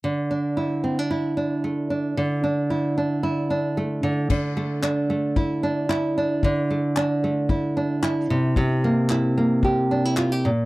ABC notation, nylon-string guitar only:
X:1
M:4/4
L:1/16
Q:"Swing 16ths" 1/4=113
K:Cmix
V:1 name="Nylon-string guitar"
D,2 D2 E2 C D E2 D2 A,2 D2 | D,2 D2 E2 D2 E2 D2 A,2 D,2 | D,2 A,2 D2 A,2 E2 D2 E2 D2 | D,2 A,2 D2 A,2 E2 D2 E2 C,2 |
C,2 B,2 E2 B,2 G2 D E F G B,,2 |]